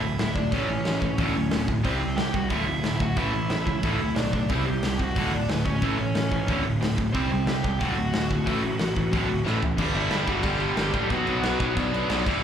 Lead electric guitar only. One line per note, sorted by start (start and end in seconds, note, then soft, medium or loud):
0.00 0.33 E4 medium
0.00 0.33 E5 loud
0.35 0.51 D4 medium
0.35 0.52 D5 medium
0.52 1.64 C#4 medium
0.52 1.64 C#5 medium
1.85 2.16 C4 medium
1.85 2.19 C5 medium
2.16 2.33 G4 medium
2.16 2.32 G5 medium
2.34 2.50 F#4 medium
2.34 2.50 F#5 medium
2.50 2.97 E4 medium
2.50 3.01 E5 loud
3.01 3.16 F#4 medium
3.01 3.17 F#5 loud
3.17 4.13 E4 medium
3.17 4.19 E5 loud
4.15 4.31 D4 medium
4.15 4.33 D5 medium
4.34 4.49 D4 medium
4.34 4.50 D5 medium
4.50 4.65 E4 medium
4.50 4.67 E5 medium
4.65 4.97 G4 medium
4.65 5.00 G5 medium
5.01 5.31 F#4 medium
5.01 5.34 F#5 medium
5.33 5.48 D4 medium
5.33 5.50 D5 medium
5.51 5.65 B3 soft
5.51 5.66 B4 medium
5.65 5.96 C#4 medium
5.65 5.99 C#5 medium
5.98 6.14 C#4 medium
5.98 6.15 C#5 medium
6.15 6.61 C#4 medium
6.15 6.62 C#5 medium
7.12 7.45 C4 medium
7.12 7.47 C5 loud
7.47 7.79 G4 medium
7.47 7.81 G5 loud
7.79 9.42 F#4 medium
7.79 9.41 F#5 loud
9.95 10.26 E4 medium
9.95 10.26 E5 loud
10.29 10.44 F#4 medium
10.29 10.46 F#5 medium
10.45 11.07 G4 medium
10.45 11.11 G5 medium
11.10 11.72 F#4 medium
11.10 11.72 F#5 medium
11.79 12.24 D4 medium
11.79 12.24 D5 medium